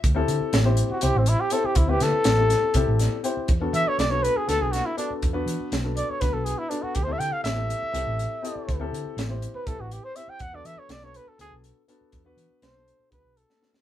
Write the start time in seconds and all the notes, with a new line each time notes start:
0.04 D2, kick, closed hi-hat
0.15 C4 E4 G4 A4
0.28 D3, closed hi-hat
0.41 muted fingered electric bass stroke
0.53 A1, snare, closed hi-hat
0.64 C4 E4 G4 C5
0.77 closed hi-hat
0.90 F#4, muted fingered electric bass stroke
1.01 C2 C4 E4 G4 C5, closed hi-hat
1.15 A1 C4
1.26 E4, closed hi-hat
1.40 G4
1.50 C4 E4 G4 A4 C5, closed hi-hat
1.64 G4, muted fingered electric bass stroke
1.75 D2 E4, kick, closed hi-hat
1.87 C4 E4 G4 B4
2.00 D3 A4, snare, closed hi-hat
2.13 muted fingered electric bass stroke
2.24 A1, snare, closed hi-hat
2.37 C4 E4 G4 A4
2.50 snare, closed hi-hat
2.74 C2 C4 E4 G4 A4, kick, closed hi-hat
2.87 A1
2.99 D5, snare, closed hi-hat
3.23 C4 E4 G4 C5 G5, closed hi-hat
3.37 muted fingered electric bass stroke
3.48 E2, kick, closed hi-hat
3.60 B3 D4 F#4 A4
3.73 E3 E5, closed hi-hat
3.86 C#5, muted fingered electric bass stroke
3.98 B1 D5, snare, closed hi-hat
4.10 B3 D4 F#4 A4 C#5
4.23 B4, closed hi-hat
4.36 G#4, muted fingered electric bass stroke
4.46 D2 B3 D4 F#4 A4, snare, closed hi-hat
4.60 B1 G#4
4.72 F#4, snare, closed hi-hat
4.86 E4
4.97 B3 D4 F#4 A4, closed hi-hat
5.10 muted fingered electric bass stroke
5.22 E2, kick, closed hi-hat
5.33 B3 D4 F#4 B4
5.46 E3, closed hi-hat
5.60 muted fingered electric bass stroke
5.72 B1, snare, closed hi-hat
5.83 B3 D4 F#4 A4
5.97 D5, closed hi-hat
6.09 C#5, muted fingered electric bass stroke
6.20 D2 B3 D4 F#4 B4, kick, snare, closed hi-hat
6.33 B1 A4
6.45 G#4, closed hi-hat
6.58 E4
6.69 B3 D4 F#4 A4, closed hi-hat
6.83 F#4, muted fingered electric bass stroke
6.95 D2 G4, kick, closed hi-hat
7.04 C4 E4 G4 C5
7.08 A4
7.12 E5
7.19 D3 G5, closed hi-hat
7.31 F5, muted fingered electric bass stroke
7.44 A1 E5, snare, closed hi-hat
7.55 C4 E4 G4 A4
7.70 closed hi-hat
7.82 muted fingered electric bass stroke
7.92 C2 C4 E4 G4 A4, closed hi-hat
8.06 A1
8.19 closed hi-hat
8.42 C4 E4 G4 A4, closed hi-hat
8.55 muted fingered electric bass stroke
8.68 D2, kick, closed hi-hat
8.80 C4 E4 G4 A4
8.92 D3, closed hi-hat
9.05 muted fingered electric bass stroke
9.17 A1, snare, closed hi-hat
9.29 C4 E4 G4 C5
9.42 closed hi-hat
9.54 B4, muted fingered electric bass stroke
9.66 C2 C4 E4 G4 A4 B4, kick, closed hi-hat
9.79 A1 F#4
9.91 G4, closed hi-hat
10.04 C5
10.16 C4 E4 G4 C5 E5, closed hi-hat
10.28 G5, muted fingered electric bass stroke
10.39 E2 F#5, kick, closed hi-hat
10.53 B3 D4 F#4 A4 D5
10.65 E3 E5, closed hi-hat
10.76 C#5, muted fingered electric bass stroke
10.89 B1 D5, snare, closed hi-hat
11.01 B3 D4 F#4 A4 C#5
11.14 B4, closed hi-hat
11.26 A4, muted fingered electric bass stroke
11.38 D2 B3 D4 F#4 G#4 A4, closed hi-hat
11.51 B1
11.64 closed hi-hat
11.88 B3 D4 F#4 A4, closed hi-hat
12.01 muted fingered electric bass stroke
12.12 E2, kick, closed hi-hat
12.25 B3 D4 F#4 B4
12.37 E3, closed hi-hat
12.50 muted fingered electric bass stroke
12.62 B1 C5, snare, closed hi-hat
12.74 B2 D4 F#4 A4
12.88 closed hi-hat
13.00 muted fingered electric bass stroke
13.10 D2 B3 D4 F#4 G#4 B4, kick, closed hi-hat
13.23 B1
13.37 A4, closed hi-hat
13.50 snare
13.60 B3 D4 F#4 A4, snare
13.74 snare